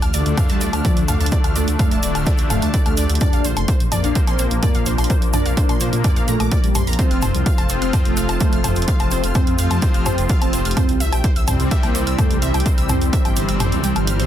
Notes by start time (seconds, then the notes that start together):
Already playing: D3 F3 A3 F4 A4
0.02 D2 F6, closed hi-hat, low woodblock, shaker
0.14 D2 D3 A3 D4 D5 D6, open hi-hat, shaker
0.26 D2 A3, closed hi-hat, shaker
0.37 F5 F6, kick, closed hi-hat, mid tom, low woodblock, shaker
0.49 D2 G3 A5 A6, closed hi-hat, shaker
0.61 D2 D5 D6, open hi-hat, shaker
0.73 D2 F6, closed hi-hat, low woodblock, shaker
0.85 F3 D5 D6, kick, closed hi-hat, shaker
0.96 D2, closed hi-hat, shaker
1.08 D2 F5 F6, mid tom, open hi-hat, low woodblock, shaker
1.20 D2 A5 A6, closed hi-hat, shaker
1.26 closed hi-hat
1.31 G4 D5 D6, kick, closed hi-hat, shaker
1.44 D2 F6, closed hi-hat, low woodblock, shaker
1.55 D2 A3 D5 D6, open hi-hat, shaker
1.67 D2, closed hi-hat, shaker
1.79 A3 F5 F6, kick, closed hi-hat, mid tom, low woodblock, shaker
1.91 D1 A5 A6, closed hi-hat, shaker
2.03 D1 D3 A3 D4 D5 D6, open hi-hat, shaker
2.15 D1 F6, closed hi-hat, low woodblock, shaker
2.26 D5 D6, kick, closed hi-hat, shaker
2.37 D2, closed hi-hat, shaker
2.50 D1 A3 F5 F6, mid tom, open hi-hat, low woodblock, shaker
2.62 D2 A5 A6, closed hi-hat, shaker
2.74 D5 D6, kick, closed hi-hat, shaker
2.86 D2 A3 F6, closed hi-hat, low woodblock, shaker
2.97 D2 D5 D6, open hi-hat, shaker
3.09 D2, closed hi-hat, shaker
3.15 closed hi-hat
3.20 C3 A#3 D4 A#4 D5 D6, kick, closed hi-hat, mid tom, low woodblock, shaker
3.33 A#1 F5 F6, closed hi-hat, shaker
3.44 A#1 C5 C6, open hi-hat, shaker
3.57 F1 C6, closed hi-hat, low woodblock, shaker
3.68 C5 C6, kick, closed hi-hat, shaker
3.80 A#1, closed hi-hat, shaker
3.92 A#1 A#2 F3 A#3 D5 D6, mid tom, open hi-hat, low woodblock, shaker
4.04 A#1 D4 F5 F6, closed hi-hat, shaker
4.15 C5 C6, kick, closed hi-hat, shaker
4.27 A#1 C4 C6, closed hi-hat, low woodblock, shaker
4.39 A#1 C5 C6, open hi-hat, shaker
4.51 A#1, closed hi-hat, shaker
4.63 A#3 D5 D6, kick, closed hi-hat, mid tom, low woodblock, shaker
4.74 A#1 F5 F6, closed hi-hat, shaker
4.86 A#1 C5 C6, open hi-hat, shaker
4.98 A#1 C6, closed hi-hat, low woodblock, shaker
5.04 closed hi-hat
5.10 C5 C6, kick, closed hi-hat, shaker
5.22 A#1, closed hi-hat, shaker
5.33 A#1 D4 D5 D6, mid tom, open hi-hat, low woodblock, shaker
5.45 A#1 F5 F6, closed hi-hat, shaker
5.57 D4 C5 C6, kick, closed hi-hat, shaker
5.69 A#2 C6, closed hi-hat, low woodblock, shaker
5.80 A#2 F3 A#3 C5 C6, open hi-hat, shaker
5.93 A#2, closed hi-hat, shaker
6.04 D5 D6, kick, closed hi-hat, mid tom, low woodblock, shaker
6.16 A#1 F5 F6, closed hi-hat, shaker
6.28 A#2 A3 A#5 A#6, open hi-hat, shaker
6.40 A#1 A#2 F3 A#3 D6, closed hi-hat, low woodblock, shaker
6.51 D5 D6, kick, closed hi-hat, shaker
6.64 A#1 G3, closed hi-hat, shaker
6.75 A#1 C6, mid tom, open hi-hat, low woodblock, shaker
6.87 A#1 F3 C4 F4 A#5 A#6, closed hi-hat, shaker
6.93 closed hi-hat
6.99 A3 C4 F4 A4 C5 C6, kick, closed hi-hat, shaker
7.11 F1 F6, closed hi-hat, shaker
7.22 F1 C5 C6, mid tom, open hi-hat, low woodblock, shaker
7.34 C2, closed hi-hat, shaker
7.46 F5 F6, kick, closed hi-hat, shaker
7.58 F1 A5 A6, closed hi-hat, low woodblock, shaker
7.69 F1 F3 C4 F4 C5 C6, open hi-hat, shaker
7.82 F1 C4 F6, closed hi-hat, shaker
7.93 C5 C6, kick, closed hi-hat, mid tom, low woodblock, shaker
8.05 F1 A3, closed hi-hat, shaker
8.17 F1 F5 F6, open hi-hat, shaker
8.29 F1 A5 A6, closed hi-hat, low woodblock, shaker
8.40 A3 C5 C6, kick, closed hi-hat, shaker
8.52 F1 F6, closed hi-hat, shaker
8.64 F1 C5 C6, mid tom, open hi-hat, low woodblock, shaker
8.75 F1, closed hi-hat, shaker
8.82 closed hi-hat
8.88 G4 F5 F6, kick, closed hi-hat, shaker
8.99 F1 A5 A6, closed hi-hat, low woodblock, shaker
9.11 F1 C4 C5 C6, open hi-hat, shaker
9.23 F1 F6, closed hi-hat, shaker
9.34 C4 C5 C6, kick, closed hi-hat, mid tom, low woodblock, shaker
9.47 F2, closed hi-hat, shaker
9.58 F2 F3 C4 F4 F5 F6, open hi-hat, shaker
9.71 F2 A5 A6, closed hi-hat, low woodblock, shaker
9.82 C5 C6, kick, closed hi-hat, shaker
9.94 F1 F6, closed hi-hat, shaker
10.06 F2 C4 C5 C6, mid tom, open hi-hat, low woodblock, shaker
10.18 F1, closed hi-hat, shaker
10.29 F5 F6, kick, closed hi-hat, shaker
10.41 F1 C4 A5 A6, closed hi-hat, low woodblock, shaker
10.53 F1 C5 C6, open hi-hat, shaker
10.65 F1 F6, closed hi-hat, shaker
10.71 closed hi-hat
10.77 C3 E3 G3 C4 E4 G4 C5 C6, kick, closed hi-hat, mid tom, low woodblock, shaker
10.89 C2, closed hi-hat, shaker
11.00 C2 E5 E6, open hi-hat, shaker
11.12 A#1 G5 G6, closed hi-hat, low woodblock, shaker
11.24 C5 C6, kick, closed hi-hat, shaker
11.36 C2 E6, closed hi-hat, shaker
11.48 C2 C3 G3 C4 C5 C6, mid tom, open hi-hat, low woodblock, shaker
11.60 C2 C4, closed hi-hat, shaker
11.71 E5 E6, kick, closed hi-hat, shaker
11.83 C2 A#3 G5 G6, closed hi-hat, low woodblock, shaker
11.95 C2 C5 C6, open hi-hat, shaker
12.07 C2 E6, closed hi-hat, shaker
12.18 A3 C5 C6, kick, closed hi-hat, mid tom, low woodblock, shaker
12.31 C2, closed hi-hat, shaker
12.42 C2 E5 E6, open hi-hat, shaker
12.54 C2 G5 G6, closed hi-hat, low woodblock, shaker
12.60 closed hi-hat
12.66 C5 C6, kick, closed hi-hat, shaker
12.78 C2 E6, closed hi-hat, shaker
12.89 C2 C4 C5 C6, mid tom, open hi-hat, low woodblock, shaker
13.01 C2, closed hi-hat, shaker
13.13 C4 E5 E6, kick, closed hi-hat, shaker
13.25 G1 G5 G6, closed hi-hat, low woodblock, shaker
13.36 G1 C3 G3 C4 C5 C6, open hi-hat, shaker
13.48 G1 E6, closed hi-hat, shaker
13.60 C5 C6, closed hi-hat, mid tom, low woodblock, shaker
13.72 D2, closed hi-hat, shaker
13.84 C2 G3 G5 G6, open hi-hat, shaker
13.96 G1 C3 G3 C4 F6, closed hi-hat, low woodblock, shaker
14.07 F6, closed hi-hat, shaker
14.19 D2 C3 E3 G3 C4 C5 C6, closed hi-hat, shaker